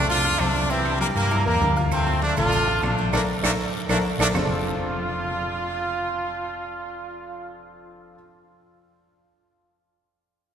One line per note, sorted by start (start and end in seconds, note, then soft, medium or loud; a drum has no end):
0.00 0.36 C2 loud
0.00 0.19 A3 medium
0.00 0.19 A4 medium
0.00 0.19 A5 medium
0.08 0.38 D4 medium
0.08 0.37 F4 loud
0.08 low agogo medium
0.08 maracas medium
0.24 0.37 F4 medium
0.24 0.37 F5 medium
0.24 0.37 F6 medium
0.24 high conga soft
0.39 1.10 C2 medium
0.39 0.70 A3 medium
0.39 0.65 C4 medium
0.39 0.69 D4 loud
0.39 0.65 C5 medium
0.39 0.65 C6 medium
0.39 high conga medium
0.39 low agogo loud
0.39 claves medium
0.39 maracas soft
0.55 high conga medium
0.55 maracas medium
0.69 0.95 E3 medium
0.69 1.00 G3 medium
0.69 1.00 C4 loud
0.69 0.95 E4 medium
0.69 0.95 E5 medium
0.69 high conga soft
0.69 low agogo medium
0.69 maracas loud
0.85 high conga soft
0.85 low agogo loud
0.85 claves medium
0.85 maracas soft
1.00 1.25 G3 medium
1.00 1.08 G3 medium
1.00 1.07 A#3 loud
1.00 1.25 G4 medium
1.00 1.26 G5 medium
1.00 high conga loud
1.00 maracas soft
1.15 1.44 G2 loud
1.15 1.45 G3 medium
1.15 1.43 A#3 loud
1.15 high conga soft
1.15 low agogo medium
1.15 maracas medium
1.31 1.43 E4 medium
1.31 1.43 E5 medium
1.31 1.44 E6 medium
1.31 high conga soft
1.31 low agogo loud
1.31 claves medium
1.31 maracas medium
1.46 1.60 E2 medium
1.46 1.75 G3 medium
1.46 1.71 A#3 medium
1.46 1.74 A#3 loud
1.46 1.71 A#4 medium
1.46 1.71 A#5 medium
1.46 high conga soft
1.46 maracas soft
1.61 2.31 D2 loud
1.61 high conga medium
1.61 low agogo medium
1.61 maracas soft
1.76 2.01 F4 medium
1.76 2.01 F5 medium
1.76 2.02 F6 medium
1.76 maracas medium
1.91 2.21 A3 medium
1.91 2.20 C4 medium
1.91 high conga soft
1.91 low agogo loud
1.91 long guiro medium
1.91 claves medium
1.91 maracas loud
2.06 2.31 C4 medium
2.06 2.31 C5 medium
2.06 2.32 C6 loud
2.06 high conga soft
2.06 low agogo medium
2.06 maracas soft
2.22 2.37 A3 medium
2.22 2.36 D4 loud
2.22 high conga loud
2.22 short guiro medium
2.22 maracas soft
2.37 2.79 A1 loud
2.37 2.62 A3 medium
2.37 2.81 D4 medium
2.37 2.80 F4 loud
2.37 2.62 A4 medium
2.37 2.63 A5 medium
2.37 high conga soft
2.37 low conga medium
2.37 low agogo loud
2.37 short guiro medium
2.37 claves medium
2.37 maracas medium
2.52 high conga soft
2.52 low agogo medium
2.52 long guiro medium
2.52 maracas loud
2.67 2.80 F4 medium
2.67 2.80 F5 medium
2.67 2.80 F6 medium
2.67 high conga soft
2.67 maracas soft
2.82 3.11 A#1 loud
2.82 3.12 A3 medium
2.82 3.08 C4 medium
2.82 3.11 D4 medium
2.82 3.08 C5 medium
2.82 3.08 C6 medium
2.82 high conga medium
2.82 low agogo loud
2.82 short guiro medium
2.82 claves medium
2.82 maracas soft
2.98 high conga medium
2.98 short guiro medium
2.98 maracas medium
3.13 3.24 A#1 medium
3.13 3.20 A3 medium
3.13 3.21 A#3 medium
3.13 3.21 D4 loud
3.13 3.23 A4 loud
3.13 3.23 A#4 medium
3.13 3.23 D5 medium
3.13 high conga medium
3.13 high timbale loud
3.13 long guiro loud
3.13 claves loud
3.13 maracas loud
3.43 3.54 A#1 loud
3.43 3.51 A3 loud
3.43 3.51 A#3 loud
3.43 3.51 D4 loud
3.43 3.53 A4 medium
3.43 3.53 A#4 medium
3.43 3.53 D5 medium
3.43 high conga loud
3.43 high timbale loud
3.43 long guiro loud
3.43 claves loud
3.43 maracas loud
3.89 4.00 A#1 medium
3.89 3.97 A3 loud
3.89 3.96 A#3 loud
3.89 3.97 D4 loud
3.89 3.99 A4 loud
3.89 3.99 A#4 loud
3.89 3.99 D5 medium
3.89 high conga loud
3.89 high timbale loud
3.89 long guiro loud
3.89 claves loud
3.89 maracas loud
4.18 4.30 A#1 loud
4.18 4.27 A3 loud
4.18 4.27 A#3 loud
4.18 4.27 D4 loud
4.18 4.29 A4 loud
4.18 4.29 A#4 medium
4.18 4.29 D5 medium
4.18 high conga loud
4.18 high timbale loud
4.18 long guiro medium
4.18 claves loud
4.18 maracas loud
4.34 8.14 F1 medium
4.34 8.14 F3 loud
4.34 8.14 C4 medium
4.34 8.14 D4 medium
4.34 8.15 F4 medium
4.34 7.54 F4 medium
4.34 8.15 A4 medium
4.34 8.15 C5 medium
4.34 low conga medium
4.34 low timbale loud
4.34 long guiro medium
4.34 claves loud
4.34 maracas loud